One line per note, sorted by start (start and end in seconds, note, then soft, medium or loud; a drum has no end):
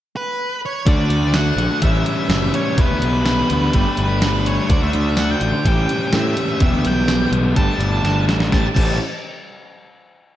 0.17 0.61 B4 medium
0.66 0.88 C#5 medium
0.86 0.97 D2 loud
0.86 1.81 D3 medium
0.86 1.81 A3 medium
0.86 1.82 D4 medium
0.86 1.82 F#4 medium
0.86 1.37 D5 medium
0.86 kick loud
0.86 closed hi-hat medium
0.98 1.08 D2 medium
1.10 1.50 D2 medium
1.10 closed hi-hat medium
1.34 1.80 F#5 medium
1.34 snare loud
1.34 closed hi-hat medium
1.34 tambourine medium
1.57 1.67 A#1 medium
1.57 closed hi-hat medium
1.82 2.02 A1 loud
1.82 2.77 A2 medium
1.82 2.77 E3 medium
1.82 2.77 G3 medium
1.82 2.78 C#4 medium
1.82 2.78 E4 medium
1.82 2.54 E5 medium
1.82 kick medium
1.82 closed hi-hat medium
2.06 closed hi-hat medium
2.29 2.50 F#1 medium
2.29 snare loud
2.29 closed hi-hat medium
2.29 tambourine loud
2.54 2.79 C#5 medium
2.54 closed hi-hat medium
2.76 2.88 E1 loud
2.76 3.72 E2 medium
2.76 3.72 B2 medium
2.76 3.73 E3 medium
2.76 3.73 G3 medium
2.76 3.73 B3 medium
2.76 3.74 E4 medium
2.76 kick loud
2.76 closed hi-hat medium
2.81 3.96 B4 medium
2.90 3.00 D2 medium
3.02 3.42 B1 medium
3.02 closed hi-hat medium
3.26 snare medium
3.26 closed hi-hat medium
3.26 tambourine medium
3.50 3.70 D2 medium
3.50 closed hi-hat medium
3.73 3.84 G1 medium
3.73 4.69 G3 medium
3.73 4.69 A3 medium
3.73 4.70 D4 medium
3.73 4.70 G4 medium
3.73 kick medium
3.73 closed hi-hat medium
3.97 4.58 G1 medium
3.97 4.48 B4 medium
3.97 closed hi-hat soft
4.22 snare loud
4.22 closed hi-hat medium
4.22 tambourine loud
4.46 4.70 C#5 medium
4.46 closed hi-hat medium
4.69 4.80 D2 medium
4.69 5.65 D3 medium
4.69 5.65 A3 medium
4.69 5.65 D4 medium
4.69 5.66 F#4 medium
4.69 4.83 D5 medium
4.69 kick loud
4.69 closed hi-hat medium
4.83 4.93 D2 medium
4.83 5.16 E5 medium
4.93 5.34 D2 medium
4.93 closed hi-hat medium
5.17 5.31 F#5 loud
5.17 snare medium
5.17 closed hi-hat medium
5.17 tambourine medium
5.31 5.67 G5 loud
5.41 5.52 A1 medium
5.41 closed hi-hat medium
5.64 5.85 A1 loud
5.64 6.60 A2 medium
5.64 6.60 E3 medium
5.64 6.61 G3 medium
5.64 6.61 C#4 medium
5.64 6.63 G4 medium
5.64 6.16 G5 medium
5.64 kick medium
5.64 closed hi-hat medium
5.89 closed hi-hat medium
6.13 6.33 A2 medium
6.13 6.59 E5 medium
6.13 snare medium
6.13 closed hi-hat medium
6.13 tambourine medium
6.37 closed hi-hat medium
6.60 6.71 E1 medium
6.60 7.55 E2 medium
6.60 7.55 B2 medium
6.60 7.55 E3 medium
6.60 7.54 G3 medium
6.60 7.56 B3 medium
6.60 7.57 G4 medium
6.60 6.87 E5 medium
6.60 kick loud
6.60 closed hi-hat medium
6.74 6.84 D2 medium
6.85 7.25 B1 medium
6.85 7.31 G5 medium
6.85 closed hi-hat medium
7.08 snare medium
7.08 closed hi-hat medium
7.08 tambourine medium
7.32 7.52 B1 medium
7.32 closed hi-hat medium
7.55 7.67 G1 medium
7.55 8.50 G3 medium
7.55 8.51 A3 medium
7.55 8.51 D4 medium
7.55 8.51 G4 medium
7.55 8.25 A5 medium
7.55 kick medium
7.55 closed hi-hat medium
7.79 7.99 G1 medium
7.79 closed hi-hat medium
8.04 8.26 G1 medium
8.04 snare medium
8.04 closed hi-hat medium
8.28 8.50 A1 medium
8.28 snare medium
8.28 closed hi-hat medium
8.40 snare medium
8.51 8.66 A1 medium
8.51 8.66 A2 medium
8.51 8.67 E3 medium
8.51 8.66 G3 medium
8.51 8.67 C#4 medium
8.51 8.67 G4 medium
8.51 8.66 A5 medium
8.51 kick loud
8.51 snare medium
8.75 8.99 A1 medium
8.75 8.95 A2 medium
8.75 8.95 E3 medium
8.75 8.96 G3 medium
8.75 8.96 C#4 medium
8.75 8.96 G4 medium
8.75 8.98 A5 medium
8.75 kick medium
8.75 crash medium